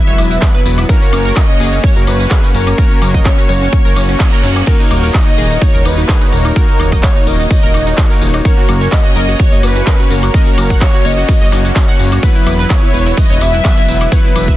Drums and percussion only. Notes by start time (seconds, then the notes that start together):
0.07 closed hi-hat, tambourine
0.18 closed hi-hat, open hi-hat, tambourine, high woodblock
0.31 closed hi-hat, tambourine
0.42 kick, snare, clap, closed hi-hat, tambourine
0.54 snare, closed hi-hat, tambourine
0.66 closed hi-hat, open hi-hat, tambourine
0.78 snare, closed hi-hat, tambourine, high woodblock
0.89 kick, closed hi-hat, tambourine
1.02 closed hi-hat, tambourine
1.13 closed hi-hat, open hi-hat, tambourine, high woodblock
1.25 snare, closed hi-hat, tambourine
1.36 kick, snare, clap, closed hi-hat, tambourine
1.49 closed hi-hat
1.60 closed hi-hat, open hi-hat, tambourine
1.73 closed hi-hat, tambourine
1.84 kick, closed hi-hat, open hi-hat, tambourine
1.96 closed hi-hat, tambourine
2.07 closed hi-hat, open hi-hat, tambourine, high woodblock
2.20 closed hi-hat, tambourine
2.31 kick, snare, clap, closed hi-hat, tambourine
2.43 snare, closed hi-hat, tambourine
2.55 closed hi-hat, open hi-hat, tambourine
2.67 closed hi-hat, tambourine, high woodblock
2.78 kick, closed hi-hat, tambourine
2.91 closed hi-hat, tambourine
3.02 closed hi-hat, open hi-hat, tambourine, high woodblock
3.14 kick, closed hi-hat
3.25 kick, snare, clap, closed hi-hat, tambourine
3.38 closed hi-hat, tambourine
3.49 closed hi-hat, open hi-hat, tambourine
3.62 closed hi-hat, tambourine
3.73 kick, closed hi-hat, tambourine
3.85 closed hi-hat, tambourine
3.96 closed hi-hat, open hi-hat, tambourine, high woodblock
4.09 closed hi-hat, tambourine
4.20 kick, snare, clap, closed hi-hat, tambourine
4.32 snare, closed hi-hat, tambourine
4.44 snare, closed hi-hat, open hi-hat, tambourine
4.56 snare, closed hi-hat, tambourine, high woodblock
4.67 kick, closed hi-hat, ride, tambourine, crash
4.80 closed hi-hat, tambourine
4.91 closed hi-hat, open hi-hat, tambourine, high woodblock
5.03 snare, closed hi-hat, tambourine
5.14 kick, snare, clap, closed hi-hat, ride
5.27 closed hi-hat
5.38 closed hi-hat, open hi-hat, tambourine
5.51 closed hi-hat, tambourine
5.62 kick, closed hi-hat, open hi-hat, ride, tambourine
5.74 closed hi-hat, tambourine
5.85 closed hi-hat, open hi-hat, tambourine, high woodblock
5.98 closed hi-hat, tambourine
6.09 kick, snare, clap, closed hi-hat, ride, tambourine
6.21 snare, closed hi-hat, tambourine
6.32 closed hi-hat, open hi-hat, tambourine
6.45 closed hi-hat, tambourine, high woodblock
6.56 kick, closed hi-hat, ride, tambourine
6.69 closed hi-hat, tambourine
6.80 closed hi-hat, open hi-hat, tambourine, high woodblock
6.92 kick, closed hi-hat, tambourine
7.03 kick, snare, clap, closed hi-hat, ride, tambourine
7.16 closed hi-hat, tambourine
7.27 closed hi-hat, open hi-hat, tambourine
7.40 closed hi-hat, tambourine
7.51 kick, closed hi-hat, ride, tambourine
7.63 closed hi-hat, tambourine
7.74 closed hi-hat, open hi-hat, tambourine, high woodblock
7.87 closed hi-hat, tambourine
7.98 kick, snare, clap, closed hi-hat, ride
8.10 snare, closed hi-hat, tambourine
8.21 closed hi-hat, open hi-hat, tambourine
8.34 snare, closed hi-hat, tambourine, high woodblock
8.45 kick, closed hi-hat, ride, tambourine
8.58 closed hi-hat, tambourine
8.69 closed hi-hat, open hi-hat, tambourine, high woodblock
8.81 snare, closed hi-hat, tambourine
8.92 kick, snare, clap, closed hi-hat, ride, tambourine
9.05 closed hi-hat
9.16 closed hi-hat, open hi-hat, tambourine
9.28 closed hi-hat, tambourine
9.40 kick, closed hi-hat, open hi-hat, ride, tambourine
9.52 closed hi-hat, tambourine
9.63 closed hi-hat, open hi-hat, tambourine, high woodblock
9.76 closed hi-hat, tambourine
9.87 kick, snare, clap, closed hi-hat, ride, tambourine
9.99 snare, closed hi-hat, tambourine
10.10 closed hi-hat, open hi-hat, tambourine
10.23 closed hi-hat, tambourine, high woodblock
10.34 kick, closed hi-hat, ride, tambourine
10.47 closed hi-hat, tambourine
10.58 closed hi-hat, open hi-hat, tambourine, high woodblock
10.70 kick, closed hi-hat
10.81 kick, snare, clap, closed hi-hat, ride, tambourine
10.94 closed hi-hat, tambourine
11.05 closed hi-hat, open hi-hat, tambourine
11.18 closed hi-hat, tambourine
11.29 kick, snare, closed hi-hat, ride, tambourine
11.41 closed hi-hat, tambourine
11.52 snare, closed hi-hat, open hi-hat, tambourine, high woodblock
11.65 closed hi-hat, tambourine
11.76 kick, snare, clap, closed hi-hat, ride, tambourine
11.88 snare, closed hi-hat, tambourine
11.99 closed hi-hat, open hi-hat, tambourine
12.12 snare, closed hi-hat, tambourine, high woodblock
12.23 kick, closed hi-hat, ride, tambourine
12.36 closed hi-hat, tambourine
12.47 closed hi-hat, open hi-hat, tambourine, high woodblock
12.59 snare, closed hi-hat, tambourine
12.70 kick, snare, clap, closed hi-hat, ride, tambourine
12.83 closed hi-hat
12.94 closed hi-hat, open hi-hat, tambourine
13.06 closed hi-hat, tambourine
13.17 kick, closed hi-hat, open hi-hat, ride, tambourine
13.30 closed hi-hat, tambourine
13.41 closed hi-hat, open hi-hat, tambourine, high woodblock
13.54 closed hi-hat, tambourine
13.65 kick, snare, clap, closed hi-hat, ride, tambourine
13.77 snare, closed hi-hat, tambourine
13.88 closed hi-hat, open hi-hat, tambourine
14.01 closed hi-hat, tambourine, high woodblock
14.12 kick, closed hi-hat, ride, tambourine
14.24 closed hi-hat, tambourine
14.36 closed hi-hat, open hi-hat, tambourine, high woodblock
14.48 kick, closed hi-hat, tambourine